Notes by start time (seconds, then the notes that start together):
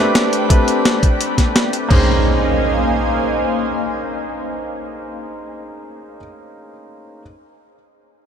Already playing: A3 C4 D4 G4 D5 G5 B5
0.00 B4
0.15 snare, closed hi-hat
0.33 closed hi-hat
0.49 A3 C4 D4 G4 B4, kick, closed hi-hat
0.68 closed hi-hat
0.85 snare, closed hi-hat
1.03 kick, closed hi-hat
1.21 closed hi-hat
1.38 kick, snare, closed hi-hat
1.56 snare, closed hi-hat
1.73 closed hi-hat
1.88 A#3 C#4 D#4 G#4 C5 D#5 F5 G#5, kick, crash, impact